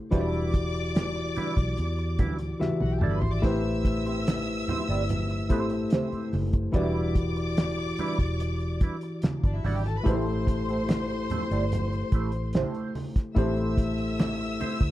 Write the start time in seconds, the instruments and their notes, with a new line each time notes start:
0.11 fingered electric bass E1, tine electric piano E3 E4 F#4 G4 C5, clean electric guitar G3 D4 E4 B4, violin section D5 D6, kick, closed hi-hat, muted conga
0.21 tine electric piano D5
0.33 closed hi-hat
0.54 kick, closed hi-hat, muted conga
0.74 muted clean electric guitar stroke, closed hi-hat
0.95 muted clean electric guitar stroke, snare, closed hi-hat, high conga
1.16 muted clean electric guitar stroke
1.36 clean electric guitar G3 D4 E4 B4, muted fingered electric bass stroke, closed hi-hat, muted conga
1.57 fingered electric bass B1, kick, closed hi-hat
1.77 fingered electric bass E2, closed hi-hat, muted conga
1.98 muted clean electric guitar stroke, closed hi-hat
2.19 fingered electric bass D2, clean electric guitar G3 D4 E4 B4, kick, closed hi-hat, low conga
2.39 closed hi-hat
2.60 tine electric piano E3 E4 F#4 G4 E5, snare, high conga
2.80 fingered electric bass B1, violin section F#4 F#5, muted clean electric guitar stroke, high tom
2.92 violin section G4 G5
3.01 fingered electric bass G1, clean electric guitar G3 D4 E4 D5, violin section A4 A5, mid tom, high conga
3.11 violin section B4 B5
3.21 fingered electric bass G#1, violin section C5 C6, floor tom
3.32 violin section D5 D6
3.42 fingered electric bass A1, tine electric piano A3 E4 G4 B4 C5, clean electric guitar C4 E4 G4 C5, violin section E5 E6, kick, splash, muted conga
3.65 muted clean electric guitar stroke
3.85 muted clean electric guitar stroke, kick, closed hi-hat, muted conga
4.05 clean electric guitar C4 E4 G4 C5, closed hi-hat
4.27 muted clean electric guitar stroke, snare, closed hi-hat, high conga
4.48 muted clean electric guitar stroke
4.68 clean electric guitar C4 E4 G4 C5, muted fingered electric bass stroke, closed hi-hat, muted conga, low conga
4.89 fingered electric bass G1, clean electric guitar C4 E4 G4 D5, closed hi-hat
5.09 closed hi-hat, muted conga, low conga
5.29 muted clean electric guitar stroke, closed hi-hat
5.49 fingered electric bass A1, tine electric piano A3 E4 G4 A4 C5, clean electric guitar C4 E4 G4 C5, kick, closed hi-hat
5.70 muted clean electric guitar stroke, closed hi-hat
5.90 clean electric guitar C4 E4 G4 C5, snare, closed hi-hat, high conga
6.12 muted fingered electric bass stroke, closed hi-hat
6.33 fingered electric bass F#1, muted clean electric guitar stroke, open hi-hat, high conga
6.53 muted clean electric guitar stroke, kick, closed hi-hat
6.72 fingered electric bass E1, tine electric piano E3 E4 F#4 G4 D5, clean electric guitar G3 D4 E4, violin section D5 D6, kick, closed hi-hat, muted conga
6.76 clean electric guitar B4
7.15 kick, closed hi-hat, muted conga
7.36 muted clean electric guitar stroke, closed hi-hat
7.57 muted clean electric guitar stroke, snare, closed hi-hat, high conga
7.78 muted clean electric guitar stroke, closed hi-hat
7.98 clean electric guitar G3 D4 E4 B4, muted fingered electric bass stroke, closed hi-hat, muted conga
8.19 fingered electric bass E1, muted clean electric guitar stroke, kick, closed hi-hat
8.40 muted clean electric guitar stroke, closed hi-hat, muted conga
8.60 closed hi-hat
8.81 clean electric guitar G3 D4 E4 B4, kick, closed hi-hat
9.01 muted clean electric guitar stroke, closed hi-hat
9.22 snare, closed hi-hat, high conga
9.43 fingered electric bass G1, violin section D4 D5, muted clean electric guitar stroke, kick, closed hi-hat
9.54 violin section E4 E5
9.64 fingered electric bass G#1, clean electric guitar G3 D4 E4 D5, violin section F#4 F#5, open hi-hat, high conga
9.75 violin section G4 G5
9.86 violin section A4 A5, muted clean electric guitar stroke, snare, closed hi-hat
9.97 violin section B4 B5
10.04 fingered electric bass A1, tine electric piano A3 E4 G4 A4 C5, clean electric guitar A3 E4, violin section C6, kick, closed hi-hat, muted conga
10.08 clean electric guitar G4 C5, violin section C5
10.28 muted clean electric guitar stroke
10.47 muted clean electric guitar stroke, kick, closed hi-hat, muted conga
10.69 clean electric guitar A3 E4 G4 C5, closed hi-hat
10.89 muted clean electric guitar stroke, snare, closed hi-hat, high conga
11.10 muted clean electric guitar stroke, closed hi-hat
11.30 clean electric guitar A3 E4 G4 C5, muted fingered electric bass stroke, closed hi-hat, muted conga, low conga
11.51 fingered electric bass G1, clean electric guitar A3 E4 G4 D5, closed hi-hat
11.72 closed hi-hat, muted conga, low conga
11.93 muted clean electric guitar stroke, closed hi-hat
12.12 fingered electric bass A1, clean electric guitar A3 E4 G4 C5, kick, closed hi-hat
12.32 closed hi-hat
12.36 muted clean electric guitar stroke
12.53 clean electric guitar A3 E4 G4 C5, snare, closed hi-hat, high conga
12.75 closed hi-hat
12.95 muted clean electric guitar stroke, open hi-hat, high conga
13.16 muted clean electric guitar stroke, kick, snare, closed hi-hat
13.35 fingered electric bass A1, tine electric piano A3 E4 G4 A4 C5, clean electric guitar C4 E4 G4 C5, violin section E5 E6, kick, closed hi-hat, muted conga
13.57 closed hi-hat
13.78 kick, closed hi-hat, muted conga
13.98 muted clean electric guitar stroke, closed hi-hat
14.19 muted clean electric guitar stroke, snare, closed hi-hat, high conga
14.40 muted clean electric guitar stroke, closed hi-hat
14.60 clean electric guitar C4 E4 G4 C5, muted fingered electric bass stroke, closed hi-hat, muted conga
14.81 fingered electric bass D2, muted clean electric guitar stroke, kick, closed hi-hat